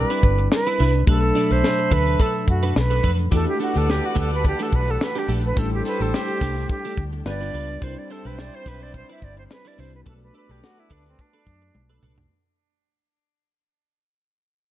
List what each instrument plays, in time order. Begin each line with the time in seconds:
Already playing: tine electric piano G3 C4 D4 E4 B4, horn section G4 B4 D5, flute B4
0.10 clean electric guitar D4 E4 B4
0.23 fingered electric bass G1, muted clean electric guitar stroke, kick, closed hi-hat
0.38 muted clean electric guitar stroke, closed hi-hat
0.52 flute B4, muted clean electric guitar stroke, snare
0.67 clean electric guitar D4 E4 B4
0.79 fingered electric bass C2, clean electric guitar D4 E4 B4, open hi-hat
0.94 muted clean electric guitar stroke, closed hi-hat
1.06 fingered electric bass B1, tine electric piano B2 F#3 A3 D4 G4, clean electric guitar D4 A4 B4, horn section A4 E5 B5, flute A4, kick, closed hi-hat
1.16 tine electric piano A4
1.22 muted clean electric guitar stroke, closed hi-hat
1.35 clean electric guitar D4 A4 D5, snare, closed hi-hat
1.50 fingered electric bass B1, clean electric guitar D4 A4 B4, flute C5, closed hi-hat
1.64 snare
1.78 muted clean electric guitar stroke, closed hi-hat
1.91 fingered electric bass D2, clean electric guitar D4 A4 B4, flute B4, kick, closed hi-hat
2.06 clean electric guitar D4 A4 B4, closed hi-hat
2.19 clean electric guitar D4 A4 B4, flute A4, kick, closed hi-hat
2.35 muted clean electric guitar stroke, closed hi-hat
2.47 fingered electric bass F#2, flute F#4, muted clean electric guitar stroke, kick, closed hi-hat
2.63 clean electric guitar D4 A4 B4, closed hi-hat
2.76 fingered electric bass B1, flute B4, muted clean electric guitar stroke, snare
2.90 clean electric guitar D4 A4 B4, snare, closed hi-hat
3.03 fingered electric bass F2, clean electric guitar D4 A4 B4, kick, open hi-hat
3.19 muted clean electric guitar stroke, closed hi-hat
3.31 fingered electric bass E2, string section E3 G3 D4 A4 F#5, clean electric guitar A3 D4 G4, tine electric piano A3 D4 E4 F#4 G4, horn section A4 B4 D5, flute A4, kick, closed hi-hat
3.46 flute G4, muted clean electric guitar stroke, closed hi-hat
3.60 clean electric guitar A3 D4 A4, flute F#4, closed hi-hat
3.74 fingered electric bass D2, clean electric guitar A3 D4 G4, flute A4, closed hi-hat
3.88 flute G4, muted clean electric guitar stroke, snare
4.02 flute F#4, muted clean electric guitar stroke, closed hi-hat
4.15 fingered electric bass D2, clean electric guitar A3 D4 G4, flute A4, kick, closed hi-hat
4.31 clean electric guitar A3 D4 G4, flute B4, closed hi-hat
4.44 muted clean electric guitar stroke, kick, closed hi-hat
4.48 flute G4
4.59 clean electric guitar A3 D4 G4, flute A4
4.72 fingered electric bass B1, flute B4, muted clean electric guitar stroke, kick, closed hi-hat
4.87 flute A4, muted clean electric guitar stroke, closed hi-hat
5.01 flute B4, muted clean electric guitar stroke, snare
5.15 clean electric guitar A3 D4 G4, flute G4, closed hi-hat
5.28 fingered electric bass A#1, clean electric guitar A3 D4 G4, open hi-hat
5.44 flute B4, muted clean electric guitar stroke, closed hi-hat
5.56 fingered electric bass A1, tine electric piano G3 A3 C#4 E4 A4, string section A3 G4, clean electric guitar A3 D4 G4, horn section G4 A4 C5, flute A4, kick, closed hi-hat
5.63 tine electric piano D4
5.71 flute G4, muted clean electric guitar stroke, closed hi-hat
5.85 clean electric guitar A3 D4 A4, flute B4, snare, closed hi-hat
6.00 fingered electric bass A1, clean electric guitar A3 D4 G4, flute A4, closed hi-hat
6.13 flute G4, muted clean electric guitar stroke, snare
6.28 muted clean electric guitar stroke, closed hi-hat
6.41 fingered electric bass C2, clean electric guitar A3 D4 G4, kick, snare, closed hi-hat
6.56 clean electric guitar A3 D4 G4, closed hi-hat
6.69 flute G4, muted clean electric guitar stroke, kick, closed hi-hat
6.85 clean electric guitar A3 D4 G4, closed hi-hat
6.97 fingered electric bass D2, muted clean electric guitar stroke, kick, closed hi-hat
7.12 muted clean electric guitar stroke, closed hi-hat
7.26 fingered electric bass G1, tine electric piano G3 B3 D4 F4 B4, string section G3 F4 B4, horn section F4 G4 B4, flute D5, muted clean electric guitar stroke, snare
7.41 clean electric guitar D4 F4 B4, snare, closed hi-hat
7.54 fingered electric bass C#2, clean electric guitar D4 F4 B4, open hi-hat
7.69 muted clean electric guitar stroke, closed hi-hat
7.81 fingered electric bass C2, tine electric piano G3 C4 D4 E4 A#4, string section G3 C4 E4, clean electric guitar D4 E4 B4, horn section E4 G4 C5, flute C5, kick, closed hi-hat
7.90 tine electric piano C5
7.96 flute D5, muted clean electric guitar stroke, closed hi-hat
8.10 clean electric guitar D4 E4 C5, flute A4, snare, closed hi-hat
8.25 fingered electric bass B1, clean electric guitar D4 E4 B4, flute B4, closed hi-hat
8.38 flute D5, muted clean electric guitar stroke, snare
8.53 flute C5, muted clean electric guitar stroke, closed hi-hat
8.66 fingered electric bass B1, clean electric guitar D4 E4 B4, flute B4, kick, snare, closed hi-hat
8.80 clean electric guitar D4 E4 B4, flute D5, closed hi-hat
8.94 flute C5, muted clean electric guitar stroke, kick, closed hi-hat
9.09 clean electric guitar D4 E4 B4, flute E5, closed hi-hat
9.22 fingered electric bass G1, flute D5, kick, closed hi-hat
9.37 flute C5, muted clean electric guitar stroke, closed hi-hat
9.50 flute B4, muted clean electric guitar stroke, snare
9.65 clean electric guitar D4 E4 B4, flute D5, snare, closed hi-hat
9.78 fingered electric bass C2, tine electric piano G3 C4 D4 E4 B4, clean electric guitar D4 E4 B4, flute C5, open hi-hat
9.93 flute B4, muted clean electric guitar stroke, closed hi-hat
10.05 fingered electric bass B1, tine electric piano A3 B3 C#4 F#4 B4, string section A3, clean electric guitar D4 A4 B4, horn section A4 B4 D5, flute A4, kick, closed hi-hat
10.13 tine electric piano D4
10.21 flute B4, muted clean electric guitar stroke, closed hi-hat
10.34 clean electric guitar D4 A4 D5, flute B4, closed hi-hat
10.49 fingered electric bass B1, clean electric guitar D4 A4 B4, flute G4, closed hi-hat
10.64 flute F#4, snare
10.77 flute E4, muted clean electric guitar stroke, closed hi-hat
10.90 fingered electric bass D2, clean electric guitar D4 A4 B4, flute D4, kick, closed hi-hat
11.05 flute C4, clean electric guitar D4 A4 B4, closed hi-hat
11.19 flute D4, muted clean electric guitar stroke, kick, closed hi-hat
11.33 clean electric guitar D4 A4 B4
11.47 fingered electric bass F#2, muted clean electric guitar stroke, kick, closed hi-hat
11.62 muted clean electric guitar stroke, closed hi-hat
11.74 fingered electric bass B1, muted clean electric guitar stroke, high tom
11.89 clean electric guitar D4 A4 B4
12.03 fingered electric bass C2, clean electric guitar D4 A4 B4, mid tom
12.17 muted clean electric guitar stroke, floor tom